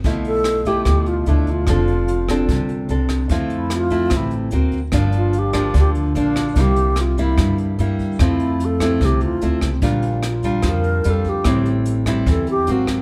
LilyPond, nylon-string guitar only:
\new Staff \with { instrumentName = "Nylon-string guitar" } { \time 4/4 \key f \major \tempo 4 = 147 << { <f a e'>4. <f a e'>4. <f a e'>4 | <c' d' a'>4. <c' d' a'>4. <c' d' a'>4 | <a c' e'>4. <a c' e'>4. <ais c' fis'>8 r8 | <f bes d'>4. <f bes d'>4. <f bes d'>4 |
<g bes e'>4 r8 <g bes e'>4. <g bes e'>4 | <a c' e'>4. <a c' e'>4. <a c' e'>8 r8 | <g d' f'>4 r8 <g d' f'>4. <g d' f'>4 | <g c' e'>4. <g c' e'>4. <ges bes c'>4 | } \\ { b,2 b,2 | f2 c2 | f2 c4 r4 | g,2 d2 |
c2 g,2 | f2 c2 | bes,2 f2 | a,2 e4 r4 | } >> }